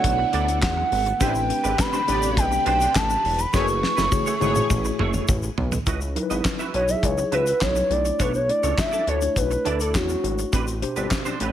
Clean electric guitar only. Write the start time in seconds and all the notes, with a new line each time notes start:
0.04 muted clean electric guitar stroke
0.18 muted clean electric guitar stroke
0.33 D4 E4 A4 D5
0.47 D4 E4 A4 D5
0.77 muted clean electric guitar stroke
1.06 muted clean electric guitar stroke
1.20 C4 D4 G4 B4
1.35 muted clean electric guitar stroke
1.49 muted clean electric guitar stroke
1.64 C4 D4 G4 B4
1.79 muted clean electric guitar stroke
1.93 C4 D4 G4 C5
2.07 C4 D4 G4 B4
2.22 muted clean electric guitar stroke
2.36 muted clean electric guitar stroke
2.51 muted clean electric guitar stroke
2.65 C4 D4 G4 C5
2.80 C4 D4 G4 C5
2.95 muted clean electric guitar stroke
3.09 muted clean electric guitar stroke
3.39 muted clean electric guitar stroke
3.53 A3 E4 G#4 B4
3.68 muted clean electric guitar stroke
3.82 muted clean electric guitar stroke
3.96 A3 E4 G#4 B4
4.11 muted clean electric guitar stroke
4.26 A3 E4 G#4 C#5
4.41 A3 E4 G#4 B4
4.56 muted clean electric guitar stroke
4.70 muted clean electric guitar stroke
4.85 muted clean electric guitar stroke
4.99 A3 E4 G#4 C#5
5.14 A3 E4 G#4 C#5
5.29 muted clean electric guitar stroke
5.43 muted clean electric guitar stroke
5.72 muted clean electric guitar stroke
5.86 E4 F#4 B4 D#5
6.01 muted clean electric guitar stroke
6.16 muted clean electric guitar stroke
6.30 E4 F#4 B4 D#5
6.45 muted clean electric guitar stroke
6.59 E4 F#4 B4 E5
6.74 E4 F#4 B4 D#5
6.88 muted clean electric guitar stroke
7.03 muted clean electric guitar stroke
7.18 muted clean electric guitar stroke
7.32 E4 F#4 B4 E5
7.46 E4 F#4 B4 E5
7.76 muted clean electric guitar stroke
8.05 muted clean electric guitar stroke
8.19 D4 E4 A4 C#5
8.34 muted clean electric guitar stroke
8.48 muted clean electric guitar stroke
8.63 D4 E4 A4 C#5
8.78 muted clean electric guitar stroke
8.92 D4 E4 A4 D5
9.07 D4 E4 A4 C#5
9.21 muted clean electric guitar stroke
9.36 muted clean electric guitar stroke
9.51 muted clean electric guitar stroke
9.65 D4 E4 A4 D5
9.80 D4 E4 A4 D5
10.09 muted clean electric guitar stroke
10.39 muted clean electric guitar stroke
10.53 C4 D4 G4 B4
10.67 muted clean electric guitar stroke
10.82 muted clean electric guitar stroke
10.96 C4 D4 G4 B4
11.25 C4 D4 G4 C5
11.40 C4 D4 G4 B4